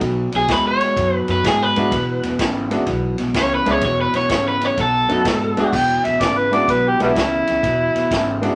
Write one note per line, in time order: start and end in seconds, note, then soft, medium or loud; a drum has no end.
0.00 0.25 B1 loud
0.00 0.29 B2 medium
0.00 0.30 F#3 medium
0.00 kick medium
0.00 snare soft
0.00 ride medium
0.32 0.46 B1 medium
0.32 0.47 B2 medium
0.32 0.48 F#3 medium
0.32 snare soft
0.32 ride medium
0.36 0.52 G#4 loud
0.48 0.85 D#2 medium
0.48 0.77 B2 medium
0.48 0.77 G#3 medium
0.48 0.66 B4 medium
0.48 kick medium
0.48 snare loud
0.48 ride medium
0.67 1.16 C#5 medium
0.81 0.95 B2 medium
0.81 0.96 G#3 medium
0.81 snare soft
0.81 ride medium
0.97 1.21 F#2 medium
0.97 1.26 B2 medium
0.97 1.26 F#3 medium
0.97 kick medium
0.97 snare soft
0.97 ride medium
1.16 1.28 B4 medium
1.28 1.41 F#2 medium
1.28 1.43 B2 medium
1.28 1.43 F#3 medium
1.28 1.45 B4 medium
1.28 snare soft
1.28 ride medium
1.44 1.69 G#2 medium
1.44 1.73 B2 medium
1.44 1.74 G#3 medium
1.44 1.63 G#4 medium
1.44 kick medium
1.44 snare loud
1.44 ride medium
1.63 3.00 B4 medium
1.76 1.89 G#2 medium
1.76 1.91 B2 medium
1.76 1.91 G#3 medium
1.76 1.91 B3 medium
1.76 1.91 D4 medium
1.76 1.91 E4 medium
1.76 1.91 F#4 medium
1.76 snare soft
1.76 ride medium
1.91 2.16 E1 loud
1.91 2.20 E2 medium
1.91 2.21 B2 medium
1.91 kick medium
1.91 snare soft
1.91 ride medium
2.23 2.36 E1 medium
2.23 2.37 E2 medium
2.23 2.38 B2 medium
2.23 snare soft
2.23 ride medium
2.38 2.76 G#1 loud
2.38 2.68 E2 medium
2.38 2.68 C#3 medium
2.38 kick medium
2.38 snare loud
2.38 ride medium
2.70 2.85 E2 medium
2.70 2.86 C#3 medium
2.70 2.85 G#3 medium
2.70 2.86 B3 medium
2.70 2.86 D4 medium
2.70 2.86 E4 medium
2.70 2.86 F#4 medium
2.70 snare soft
2.70 ride medium
2.86 3.11 B1 medium
2.86 3.15 E2 medium
2.86 3.16 B2 medium
2.86 kick medium
2.86 snare soft
2.86 ride medium
3.18 3.32 B1 medium
3.18 3.33 E2 medium
3.18 3.34 B2 medium
3.18 snare soft
3.18 ride medium
3.34 3.59 C#2 medium
3.34 3.64 E2 medium
3.34 3.64 C#3 medium
3.34 kick medium
3.34 snare loud
3.34 ride medium
3.38 3.52 C#5 loud
3.55 3.71 B4 medium
3.65 3.79 C#2 medium
3.65 3.81 E2 medium
3.65 3.81 C#3 medium
3.65 3.80 G#3 medium
3.65 3.81 B3 medium
3.65 3.81 D4 medium
3.65 3.81 E4 medium
3.65 3.81 G#4 medium
3.65 snare soft
3.65 ride medium
3.71 3.84 C#5 loud
3.81 4.06 E1 loud
3.81 4.12 E2 medium
3.81 4.12 B2 medium
3.81 3.99 C#5 loud
3.81 kick medium
3.81 snare soft
3.81 ride medium
4.01 4.15 B4 medium
4.13 4.26 E1 medium
4.13 4.29 E2 medium
4.13 4.29 B2 medium
4.13 4.30 C#5 medium
4.13 snare soft
4.13 ride medium
4.29 4.66 G#1 medium
4.29 4.59 E2 medium
4.29 4.59 C#3 medium
4.29 4.46 C#5 medium
4.29 kick medium
4.29 snare loud
4.29 ride medium
4.48 4.65 B4 medium
4.61 4.76 E2 medium
4.61 4.76 C#3 medium
4.61 snare soft
4.61 ride medium
4.65 4.79 C#5 medium
4.77 5.02 B1 loud
4.77 5.06 B2 medium
4.77 5.06 F#3 medium
4.77 5.72 A4 loud
4.77 kick medium
4.77 snare soft
4.77 ride medium
5.08 5.22 F#2 medium
5.08 5.23 B2 medium
5.08 5.24 F#3 medium
5.08 5.23 A3 medium
5.08 5.23 B3 medium
5.08 5.24 C#4 medium
5.08 5.24 D#4 medium
5.08 5.24 F#4 medium
5.08 snare soft
5.08 ride medium
5.24 5.49 G#2 medium
5.24 5.53 B2 medium
5.24 5.54 G#3 medium
5.24 kick medium
5.24 snare loud
5.24 ride medium
5.57 5.69 D#2 medium
5.57 5.71 B2 medium
5.57 5.72 G#3 medium
5.57 5.71 B3 medium
5.57 5.72 D4 medium
5.57 5.72 E4 medium
5.57 5.72 F#4 medium
5.57 snare soft
5.57 ride medium
5.73 5.97 E1 loud
5.73 6.01 E2 medium
5.73 6.01 B2 medium
5.73 6.07 G5 loud
5.73 kick medium
5.73 snare soft
5.73 crash loud
6.04 6.17 E1 medium
6.04 6.19 E2 medium
6.04 6.19 B2 medium
6.04 6.23 E5 medium
6.04 snare soft
6.04 ride medium
6.20 6.57 G#1 medium
6.20 6.49 E2 medium
6.20 6.49 C#3 medium
6.20 6.39 D5 medium
6.20 kick medium
6.20 snare loud
6.20 ride medium
6.38 6.56 B4 medium
6.51 6.66 E2 medium
6.51 6.67 C#3 medium
6.51 6.66 G#3 medium
6.51 6.66 B3 medium
6.51 6.66 D4 medium
6.51 6.67 E4 medium
6.51 6.67 F#4 medium
6.51 6.72 D5 medium
6.51 snare soft
6.51 ride medium
6.68 6.92 B1 medium
6.68 6.97 E2 medium
6.68 6.97 B2 medium
6.68 6.90 B4 medium
6.68 kick medium
6.68 snare soft
6.68 ride medium
6.88 7.02 G4 medium
6.99 7.12 B1 medium
6.99 7.15 E2 medium
6.99 7.15 B2 medium
6.99 7.09 G3 medium
6.99 7.14 G#3 medium
6.99 7.14 B3 medium
6.99 7.11 B3 medium
6.99 7.14 D4 medium
6.99 7.15 E4 medium
6.99 8.40 E4 loud
6.99 7.15 F#4 medium
6.99 snare soft
6.99 ride medium
7.15 7.40 C#2 medium
7.15 7.45 E2 medium
7.15 7.45 C#3 medium
7.15 kick medium
7.15 snare loud
7.15 ride medium
7.47 7.60 C#2 medium
7.47 7.62 E2 medium
7.47 7.62 C#3 medium
7.47 snare soft
7.47 ride medium
7.63 7.88 E1 loud
7.63 7.92 E2 medium
7.63 7.92 B2 medium
7.63 kick medium
7.63 snare soft
7.63 ride medium
7.94 8.07 E1 medium
7.94 8.09 E2 medium
7.94 8.09 B2 medium
7.94 snare soft
7.94 ride medium
8.11 8.47 G#1 medium
8.11 8.39 E2 medium
8.11 8.39 C#3 medium
8.11 kick medium
8.11 snare loud
8.11 ride medium
8.42 8.55 E2 medium
8.42 8.55 C#3 medium
8.42 8.55 G#3 medium
8.42 8.55 B3 medium
8.42 8.55 D4 medium
8.42 8.55 E4 medium
8.42 8.55 F#4 medium
8.42 snare soft
8.42 ride medium